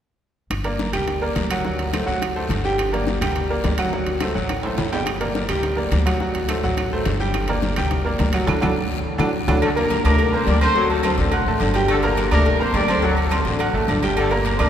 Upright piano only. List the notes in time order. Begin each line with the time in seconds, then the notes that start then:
0.65 A#3 A#4 D5
0.92 G3 G4 G5
1.22 A#3 A#4 D5
1.51 F#3 F#4 F#5
1.66 F#3 F#4 F#5
1.93 A3 A4 C5
2.06 F#3 F#4 F#5
2.36 A3 A4 C5
2.64 G3 G4 G5
2.92 A#3 A#4 D5
3.21 G3 G4 G5
3.50 A#3 A#4 D5
3.79 F#3 F#4 F#5
3.94 F#3 F#4 F#5
4.22 A3 A4 C5
4.35 F#3 F#4 F#5
4.65 A3 A4 C5
4.92 G3 G4 G5
5.21 A#3 A#4 D5
5.49 G3 G4 G5
5.77 A#3 A#4 D5
6.06 F#3 F#4 F#5
6.21 F#3 F#4 F#5
6.48 A3 A4 C5
6.64 F#3 F#4 F#5
6.93 A3 A4 C5
7.20 G3 G4 G5
7.49 A#3 A#4 D5
7.77 G3 G4 G5
8.04 A#3 A#4 D5
8.34 F#3 F#4 F#5
8.47 D4 F#4 A4
8.61 D4 F#4 A4
9.18 D4 F#4 A4
9.48 D4 F#4 A4
9.76 A#3 A#4 A#5
10.05 D4 D5 D6
10.33 A#3 A#4 A#5
10.62 C4 C5 C6
10.76 F#3 F#4 F#5
11.05 C4 C5 C6
11.33 F#4 F#5 F#6
11.48 A3 A4 A5
11.75 G3 G4 G5
12.03 A#3 A#4 A#5
12.32 D4 D5 D6
12.60 A#3 A#4 A#5
12.89 C4 C5 C6
13.03 F#3 F#4 F#5
13.31 C4 C5 C6
13.60 F#4 F#5 F#6
13.74 A3 A4 A5
14.03 G3 G4 G5
14.31 A#3 A#4 A#5
14.59 D4 D5 D6